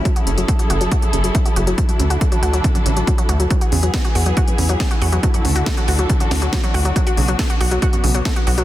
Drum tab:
HH |xxxxxxxxxxxxxxxx|xxxxxxxxxxxxxxxx|xxoxxxoxxxoxxxox|xxoxxxoxxxoxxxox|
SD |----------------|----------------|----o-------o---|----o-----o-o---|
BD |o---o---o---o---|o---o---o---o---|o---o---o---o---|o---o---o---o---|

HH |xxoxxxoxxxoxxxox|
SD |----o-------o---|
BD |o---o---o---o---|